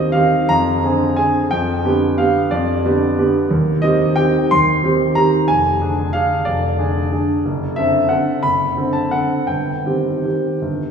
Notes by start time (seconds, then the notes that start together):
Already playing: D#2 D#3 C4 G4 D#5
0.12 D#3 C4 G4 F5
0.49 F2 A#5
0.84 D3 C4 G#4
1.16 D3 C4 G#4 G#5
1.51 F2 G5
1.85 D3 B3 G4
2.18 D3 B3 G4 F5
2.51 F2 D5
2.84 D3 B3 G4
3.19 D3 B3 G4
3.51 D#2
3.82 D#3 C4 G4 D#5
4.16 D#3 C4 G4 G5
4.51 D#2 C6
4.84 D#3 C4 G4
5.15 D#3 C4 G4 A#5
5.48 F1 G#5
5.81 D3 D4 G#4
6.13 D3 D4 G#4 F5
6.45 F1 D5
6.78 D3 D4 G#4
7.12 D3 D4 G#4
7.45 F#1
7.76 D3 C4 A4 E5
8.09 D3 C4 A4 F#5
8.43 F#1 B5
8.77 D3 C4 A4
8.93 A5
9.11 D3 C4 A4 F#5
9.47 G1 G5
9.86 D#3 C4 G4
10.24 D#3 C4 G4
10.62 G1